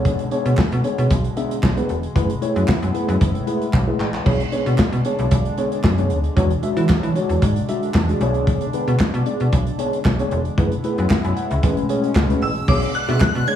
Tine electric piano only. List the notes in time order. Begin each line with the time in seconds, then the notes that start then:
Already playing: B3 D4 G#4 C#5
0.31 B3 D4 G#4 C#5
0.84 B3 D4 G#4 C#5
1.36 B3 D4 G#4 E5
1.76 B3 D4 G#4 B4
2.15 A3 E4 G#4 B4
2.41 A3 E4 G#4 C#5
2.94 A3 E4 G#4 B4
3.47 A3 E4 G#4 B4
3.87 A3 E4 G#4 B4
4.25 B3 D4 G#4 C#5
4.52 B3 D4 G#4 C#5
5.05 B3 D4 G#4 C#5
5.58 B3 D4 G#4 C#5
5.98 B3 D4 G#4 C#5
6.36 G#3 D4 F#4 C#5
6.62 G#3 D4 F#4 E5
7.15 G#3 D4 F#4 C#5
7.68 G#3 D4 F#4 E5
8.08 G#3 D4 F#4 G#4
8.21 B3 D4 G#4 C#5
8.73 B3 D4 G#4 B4
9.26 B3 D4 G#4 D5
9.78 B3 D4 G#4 C#5
10.19 B3 D4 G#4 C#5
10.57 A3 E4 G#4 B4
10.84 A3 E4 G#4 B4
11.11 E5
11.25 G#5
11.37 F#5
11.51 E5
11.63 A3 C#4 G#4 B4
11.89 A3 C#4 G#4 C#5
12.29 A3 C#4 G#4 B4
12.68 B3 D4 G#4 C#5
13.08 B3 D4 G#4 E5
13.47 B3 D4 G#4 C#5